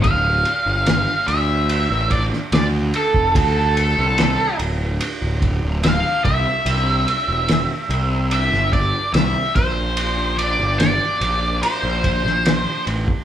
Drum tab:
RD |x-x-x-x-x-x-x-x-|x-x-x-x-x-x-x-x-|x-x-x-x-x-x-x-x-|x-x-x-x-x-x-x-x-|
SD |----o------oo---|----o-------o---|----o----o--o---|----o------oo---|
BD |o---------o----o|o---------o---o-|----------o---o-|----------o----o|